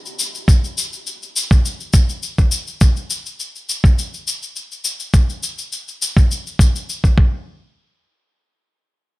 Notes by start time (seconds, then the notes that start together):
0.06 cabasa
0.19 cabasa
0.35 cabasa
0.48 kick, cabasa
0.64 cabasa
0.78 cabasa
0.93 cabasa
1.07 cabasa
1.23 cabasa
1.36 cabasa
1.51 kick, cabasa
1.65 cabasa
1.80 cabasa
1.93 kick, cabasa
2.09 cabasa
2.23 cabasa
2.38 kick, cabasa
2.51 cabasa
2.67 cabasa
2.81 kick, cabasa
2.96 cabasa
3.10 cabasa
3.26 cabasa
3.40 cabasa
3.56 cabasa
3.69 cabasa
3.84 kick, cabasa
3.99 cabasa
4.14 cabasa
4.27 cabasa
4.43 cabasa
4.56 cabasa
4.72 cabasa
4.84 cabasa
5.00 cabasa
5.14 kick, cabasa
5.30 cabasa
5.43 cabasa
5.58 cabasa
5.72 cabasa
5.88 cabasa
6.02 cabasa
6.17 kick, cabasa
6.31 cabasa
6.47 cabasa
6.59 kick, cabasa
6.76 cabasa
6.89 cabasa
7.04 kick, cabasa
7.18 kick